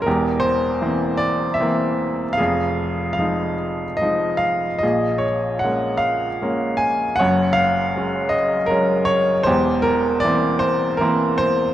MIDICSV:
0, 0, Header, 1, 2, 480
1, 0, Start_track
1, 0, Tempo, 773196
1, 37, Time_signature, 3, 2, 24, 8
1, 1478, Tempo, 816327
1, 2918, Tempo, 793651
1, 3878, Tempo, 767263
1, 7207, End_track
2, 0, Start_track
2, 0, Title_t, "Grand piano"
2, 0, Program_c, 0, 0
2, 0, Control_c, 0, 64, 127
2, 12, Note_on_c, 0, 70, 77
2, 38, Note_on_c, 0, 40, 65
2, 41, Note_on_c, 0, 67, 64
2, 42, Note_on_c, 0, 28, 60
2, 46, Control_c, 0, 64, 0
2, 150, Control_c, 0, 64, 127
2, 246, Note_on_c, 0, 72, 93
2, 267, Note_off_c, 0, 70, 0
2, 506, Note_on_c, 0, 58, 44
2, 507, Note_on_c, 0, 52, 45
2, 509, Note_on_c, 0, 60, 58
2, 726, Note_off_c, 0, 67, 0
2, 729, Note_on_c, 0, 74, 90
2, 750, Note_off_c, 0, 72, 0
2, 893, Note_off_c, 0, 52, 0
2, 893, Note_off_c, 0, 58, 0
2, 895, Note_off_c, 0, 60, 0
2, 955, Note_on_c, 0, 76, 85
2, 989, Note_off_c, 0, 74, 0
2, 994, Note_on_c, 0, 52, 53
2, 997, Note_on_c, 0, 58, 50
2, 999, Note_on_c, 0, 60, 59
2, 1383, Note_off_c, 0, 52, 0
2, 1385, Note_off_c, 0, 58, 0
2, 1386, Note_off_c, 0, 60, 0
2, 1436, Note_off_c, 0, 76, 0
2, 1446, Note_on_c, 0, 77, 86
2, 1454, Note_off_c, 0, 40, 0
2, 1456, Note_off_c, 0, 28, 0
2, 1475, Note_on_c, 0, 68, 66
2, 1485, Note_on_c, 0, 41, 63
2, 1486, Control_c, 0, 64, 0
2, 1487, Note_on_c, 0, 29, 58
2, 1594, Control_c, 0, 64, 127
2, 1910, Note_off_c, 0, 77, 0
2, 1918, Note_on_c, 0, 77, 74
2, 1953, Note_on_c, 0, 53, 45
2, 1953, Note_on_c, 0, 56, 39
2, 1958, Note_on_c, 0, 63, 51
2, 2163, Note_off_c, 0, 68, 0
2, 2337, Note_off_c, 0, 53, 0
2, 2338, Note_off_c, 0, 56, 0
2, 2341, Note_off_c, 0, 63, 0
2, 2411, Note_on_c, 0, 75, 82
2, 2431, Note_off_c, 0, 77, 0
2, 2438, Note_on_c, 0, 53, 44
2, 2442, Note_on_c, 0, 56, 43
2, 2445, Note_on_c, 0, 63, 49
2, 2649, Note_on_c, 0, 77, 85
2, 2673, Note_off_c, 0, 75, 0
2, 2825, Note_off_c, 0, 53, 0
2, 2828, Note_off_c, 0, 56, 0
2, 2829, Note_off_c, 0, 63, 0
2, 2892, Note_on_c, 0, 75, 77
2, 2898, Note_off_c, 0, 41, 0
2, 2899, Note_off_c, 0, 29, 0
2, 2913, Note_off_c, 0, 77, 0
2, 2917, Note_on_c, 0, 46, 51
2, 2919, Note_on_c, 0, 34, 51
2, 2919, Note_on_c, 0, 68, 58
2, 2925, Control_c, 0, 64, 0
2, 3034, Control_c, 0, 64, 127
2, 3132, Note_on_c, 0, 73, 72
2, 3159, Note_off_c, 0, 75, 0
2, 3379, Note_on_c, 0, 78, 75
2, 3397, Note_off_c, 0, 73, 0
2, 3405, Note_on_c, 0, 56, 46
2, 3405, Note_on_c, 0, 58, 38
2, 3409, Note_on_c, 0, 61, 42
2, 3611, Note_on_c, 0, 77, 82
2, 3619, Note_off_c, 0, 68, 0
2, 3637, Note_off_c, 0, 78, 0
2, 3784, Note_off_c, 0, 58, 0
2, 3785, Note_off_c, 0, 56, 0
2, 3787, Note_off_c, 0, 61, 0
2, 3879, Note_on_c, 0, 56, 45
2, 3882, Note_on_c, 0, 58, 46
2, 3883, Note_on_c, 0, 61, 56
2, 4099, Note_on_c, 0, 80, 85
2, 4122, Note_off_c, 0, 77, 0
2, 4271, Note_off_c, 0, 56, 0
2, 4272, Note_off_c, 0, 58, 0
2, 4273, Note_off_c, 0, 61, 0
2, 4340, Note_on_c, 0, 78, 93
2, 4343, Note_off_c, 0, 46, 0
2, 4344, Note_off_c, 0, 34, 0
2, 4363, Note_on_c, 0, 73, 68
2, 4364, Note_off_c, 0, 80, 0
2, 4368, Note_on_c, 0, 30, 60
2, 4371, Note_on_c, 0, 42, 58
2, 4376, Control_c, 0, 64, 0
2, 4488, Control_c, 0, 64, 127
2, 4573, Note_on_c, 0, 77, 101
2, 4603, Note_off_c, 0, 78, 0
2, 4845, Note_on_c, 0, 54, 50
2, 4850, Note_on_c, 0, 56, 44
2, 4851, Note_on_c, 0, 61, 53
2, 5047, Note_off_c, 0, 73, 0
2, 5050, Note_on_c, 0, 75, 87
2, 5071, Note_off_c, 0, 77, 0
2, 5217, Note_off_c, 0, 54, 0
2, 5220, Note_off_c, 0, 56, 0
2, 5221, Note_off_c, 0, 61, 0
2, 5283, Note_on_c, 0, 70, 85
2, 5304, Note_off_c, 0, 75, 0
2, 5306, Note_on_c, 0, 56, 50
2, 5308, Note_on_c, 0, 54, 51
2, 5310, Note_on_c, 0, 61, 60
2, 5526, Note_on_c, 0, 73, 99
2, 5541, Note_off_c, 0, 70, 0
2, 5688, Note_off_c, 0, 56, 0
2, 5689, Note_off_c, 0, 54, 0
2, 5690, Note_off_c, 0, 61, 0
2, 5760, Note_off_c, 0, 30, 0
2, 5761, Note_off_c, 0, 42, 0
2, 5765, Note_on_c, 0, 72, 94
2, 5783, Note_off_c, 0, 73, 0
2, 5786, Note_on_c, 0, 40, 70
2, 5786, Note_on_c, 0, 67, 70
2, 5790, Note_on_c, 0, 28, 66
2, 5794, Control_c, 0, 64, 0
2, 5910, Control_c, 0, 64, 127
2, 6008, Note_on_c, 0, 70, 90
2, 6023, Note_off_c, 0, 72, 0
2, 6245, Note_on_c, 0, 74, 94
2, 6264, Note_off_c, 0, 70, 0
2, 6271, Note_on_c, 0, 52, 55
2, 6273, Note_on_c, 0, 58, 49
2, 6273, Note_on_c, 0, 60, 60
2, 6482, Note_off_c, 0, 67, 0
2, 6489, Note_on_c, 0, 72, 92
2, 6504, Note_off_c, 0, 74, 0
2, 6656, Note_off_c, 0, 52, 0
2, 6658, Note_off_c, 0, 58, 0
2, 6658, Note_off_c, 0, 60, 0
2, 6728, Note_on_c, 0, 70, 84
2, 6749, Note_off_c, 0, 72, 0
2, 6750, Note_on_c, 0, 58, 53
2, 6751, Note_on_c, 0, 52, 60
2, 6754, Note_on_c, 0, 60, 65
2, 6981, Note_on_c, 0, 72, 98
2, 6992, Note_off_c, 0, 70, 0
2, 7144, Note_off_c, 0, 58, 0
2, 7145, Note_off_c, 0, 52, 0
2, 7147, Note_off_c, 0, 60, 0
2, 7207, Note_off_c, 0, 28, 0
2, 7207, Note_off_c, 0, 40, 0
2, 7207, Note_off_c, 0, 72, 0
2, 7207, End_track
0, 0, End_of_file